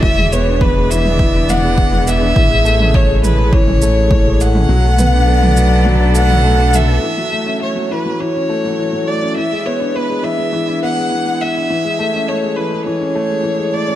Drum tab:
SH |--x---x---x---x-|--x---x---x---x-|--x---x---x---x-|----------------|
T2 |-o--o--o--o--o--|o--o--o--o--o--o|--o--o--o--o--o-|----------------|
BD |o---o---o---o---|o---o---o---o---|----------------|----------------|

SH |----------------|----------------|
T2 |----------------|----------------|
BD |----------------|----------------|